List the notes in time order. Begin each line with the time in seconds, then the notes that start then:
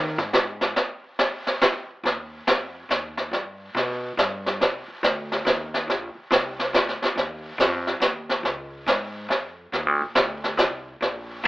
Already playing: D#3
0.18 G#2, snare
0.33 snare
0.61 snare
0.76 brush sweep, snare
1.19 snare
1.47 snare
1.62 snare
2.04 D#2, brush sweep, snare
2.47 F2, snare, hi-hat pedal
2.89 D#2, snare, hi-hat pedal
3.17 snare
3.31 G2, brush sweep, snare
3.75 B2, snare
4.17 G2, snare, hi-hat pedal
4.46 snare
4.60 C2, brush sweep, snare
4.88 muted upright bass stroke
5.03 D2, snare, hi-hat pedal
5.32 snare
5.45 D#2, snare, hi-hat pedal
5.74 snare
5.88 A#1, brush sweep, snare
6.15 muted upright bass stroke
6.31 C2, snare, hi-hat pedal
6.59 snare
6.73 D2, snare, hi-hat pedal
6.89 snare
7.01 muted upright bass stroke, snare
7.04 snare
7.16 D#2, brush sweep, snare
7.58 F2, snare, hi-hat pedal
7.87 snare
8.00 D#2, snare, hi-hat pedal
8.29 snare
8.43 C#2, brush sweep, snare
8.87 G#2, snare, hi-hat pedal
9.29 F2, snare
9.72 D#2, brush sweep, snare
9.86 D2
10.02 A#1
10.15 D2, snare, hi-hat pedal
10.44 snare
10.57 C2, snare, hi-hat pedal
11.01 A#1, brush sweep, snare
11.44 G#1